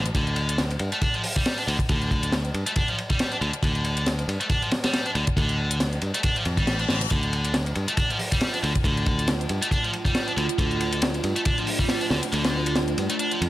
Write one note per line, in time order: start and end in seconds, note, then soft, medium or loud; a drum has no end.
0.06 closed hi-hat medium
0.15 0.76 D2 medium
0.15 0.58 D3 medium
0.15 kick loud
0.15 closed hi-hat soft
0.15 ride medium
0.27 closed hi-hat soft
0.36 ride medium
0.49 closed hi-hat medium
0.49 ride soft
0.58 snare loud
0.58 closed hi-hat soft
0.58 ride medium
0.71 closed hi-hat soft
0.71 ride soft
0.79 0.89 G2 medium
0.79 ride medium
0.92 0.97 A3 medium
0.92 closed hi-hat medium
1.02 1.14 D4 medium
1.02 kick loud
1.02 closed hi-hat soft
1.02 ride medium
1.14 1.21 F3 medium
1.14 closed hi-hat soft
1.23 open hi-hat medium
1.36 1.57 G3 medium
1.36 kick medium
1.36 closed hi-hat medium
1.46 snare loud
1.46 closed hi-hat soft
1.46 ride medium
1.58 1.62 D4 medium
1.58 closed hi-hat soft
1.68 1.76 D2 medium
1.68 1.76 D3 medium
1.68 ride medium
1.79 kick medium
1.79 closed hi-hat medium
1.89 2.50 D2 medium
1.89 2.32 D3 medium
1.89 kick loud
1.89 closed hi-hat soft
1.89 ride medium
2.02 closed hi-hat soft
2.11 kick medium
2.11 ride medium
2.23 closed hi-hat medium
2.23 ride soft
2.32 snare loud
2.32 closed hi-hat soft
2.32 ride medium
2.45 closed hi-hat soft
2.54 2.63 G2 medium
2.54 ride medium
2.67 2.71 A3 medium
2.67 closed hi-hat medium
2.76 2.88 D4 medium
2.76 kick loud
2.76 closed hi-hat soft
2.76 ride medium
2.88 2.95 F3 loud
2.88 closed hi-hat soft
2.98 ride medium
3.10 3.31 G3 medium
3.10 kick loud
3.10 closed hi-hat medium
3.19 snare loud
3.19 closed hi-hat soft
3.19 ride medium
3.32 3.36 D4 medium
3.32 closed hi-hat soft
3.41 3.50 D2 medium
3.41 3.50 D3 medium
3.41 ride medium
3.53 closed hi-hat medium
3.63 4.24 D2 loud
3.63 4.06 D3 medium
3.63 kick medium
3.63 closed hi-hat soft
3.63 ride medium
3.75 closed hi-hat soft
3.84 ride medium
3.97 closed hi-hat medium
3.97 ride soft
4.06 snare loud
4.06 closed hi-hat soft
4.06 ride medium
4.19 closed hi-hat soft
4.19 ride soft
4.28 4.37 G2 medium
4.28 ride medium
4.41 4.45 A3 medium
4.41 closed hi-hat medium
4.50 4.62 D4 medium
4.50 kick loud
4.50 closed hi-hat soft
4.50 ride medium
4.62 4.69 F3 loud
4.62 closed hi-hat soft
4.71 snare loud
4.71 ride medium
4.84 5.05 G3 medium
4.84 snare loud
4.84 closed hi-hat medium
4.84 ride medium
4.93 snare loud
4.93 closed hi-hat soft
4.93 ride medium
5.06 5.10 D4 medium
5.06 closed hi-hat soft
5.15 5.24 D2 medium
5.15 5.24 D3 medium
5.15 ride medium
5.27 kick medium
5.27 closed hi-hat medium
5.37 5.97 D2 medium
5.37 5.80 D3 medium
5.37 kick loud
5.37 closed hi-hat soft
5.37 ride medium
5.49 closed hi-hat soft
5.71 closed hi-hat medium
5.80 snare medium
5.80 closed hi-hat soft
5.80 ride medium
5.93 closed hi-hat soft
6.02 6.11 G2 medium
6.02 ride medium
6.14 6.19 A3 medium
6.14 closed hi-hat medium
6.23 6.36 D4 medium
6.23 kick loud
6.23 closed hi-hat soft
6.23 ride medium
6.23 reverse cymbal medium
6.36 6.43 F3 loud
6.36 closed hi-hat soft
6.45 6.59 F2 medium
6.45 ride medium
6.57 6.84 A1 medium
6.57 6.79 G3 medium
6.57 kick medium
6.57 closed hi-hat medium
6.67 snare loud
6.67 closed hi-hat medium
6.67 ride medium
6.79 6.84 D4 medium
6.79 closed hi-hat soft
6.79 ride soft
6.89 7.06 A1 medium
6.89 6.98 D3 medium
6.89 snare loud
6.89 ride medium
7.01 closed hi-hat medium
7.10 7.72 D2 medium
7.10 7.54 D3 medium
7.10 13.49 A3 medium
7.10 13.49 D4 medium
7.10 13.49 F4 medium
7.10 kick loud
7.10 closed hi-hat medium
7.10 ride medium
7.23 closed hi-hat soft
7.33 ride medium
7.45 closed hi-hat medium
7.45 ride soft
7.54 snare loud
7.54 closed hi-hat soft
7.54 ride medium
7.66 closed hi-hat soft
7.66 ride soft
7.75 7.85 G2 medium
7.75 ride medium
7.88 7.92 A3 medium
7.88 closed hi-hat medium
7.97 8.10 D4 medium
7.97 kick loud
7.97 closed hi-hat soft
7.97 ride medium
8.10 8.17 F3 loud
8.10 closed hi-hat soft
8.19 open hi-hat medium
8.32 8.53 G3 medium
8.32 kick medium
8.32 closed hi-hat medium
8.41 snare loud
8.41 closed hi-hat medium
8.41 ride medium
8.54 8.58 D4 medium
8.54 closed hi-hat soft
8.63 8.72 D2 medium
8.63 8.72 D3 medium
8.63 ride medium
8.75 kick medium
8.75 closed hi-hat medium
8.84 9.45 D2 medium
8.84 9.27 D3 medium
8.84 kick loud
8.84 closed hi-hat medium
8.84 ride medium
8.97 closed hi-hat soft
9.06 kick medium
9.06 ride medium
9.19 closed hi-hat medium
9.19 ride soft
9.28 snare loud
9.28 closed hi-hat soft
9.28 ride medium
9.41 closed hi-hat soft
9.49 9.59 G2 medium
9.49 ride medium
9.62 9.66 A3 medium
9.62 closed hi-hat medium
9.71 9.83 D4 medium
9.71 kick medium
9.71 closed hi-hat medium
9.71 ride medium
9.84 9.91 F3 loud
9.84 closed hi-hat soft
9.93 ride medium
10.05 10.26 G3 medium
10.05 kick loud
10.05 closed hi-hat medium
10.15 snare loud
10.15 closed hi-hat medium
10.15 ride medium
10.27 10.32 D4 medium
10.27 closed hi-hat soft
10.37 10.46 D2 medium
10.37 10.46 D3 medium
10.37 ride medium
10.49 closed hi-hat medium
10.58 11.19 D2 medium
10.58 11.01 D3 medium
10.58 kick loud
10.58 closed hi-hat medium
10.58 ride medium
10.71 closed hi-hat soft
10.80 ride medium
10.92 closed hi-hat medium
10.92 ride soft
11.02 snare loud
11.02 closed hi-hat soft
11.02 ride medium
11.14 closed hi-hat soft
11.14 ride soft
11.24 11.33 G2 medium
11.24 ride medium
11.36 11.40 A3 medium
11.36 closed hi-hat medium
11.45 11.57 D4 medium
11.45 kick loud
11.45 closed hi-hat soft
11.45 ride medium
11.58 11.65 F3 loud
11.58 closed hi-hat soft
11.67 open hi-hat medium
11.79 12.00 G3 medium
11.79 kick medium
11.79 closed hi-hat medium
11.89 snare loud
11.89 closed hi-hat medium
11.89 ride medium
12.01 12.05 D4 medium
12.01 closed hi-hat soft
12.11 12.19 D2 medium
12.11 12.19 D3 medium
12.11 snare medium
12.11 ride medium
12.23 closed hi-hat medium
12.32 12.93 D2 loud
12.32 12.75 D3 medium
12.32 closed hi-hat soft
12.32 ride medium
12.45 snare loud
12.45 closed hi-hat soft
12.45 ride medium
12.66 closed hi-hat medium
12.66 ride medium
12.76 snare loud
12.76 closed hi-hat soft
12.76 ride medium
12.88 closed hi-hat soft
12.98 13.07 G2 medium
12.98 ride medium
13.10 13.14 A3 medium
13.10 closed hi-hat medium
13.19 13.31 D4 medium
13.19 closed hi-hat soft
13.31 13.39 F3 loud
13.31 closed hi-hat soft
13.42 13.49 F2 medium
13.42 ride medium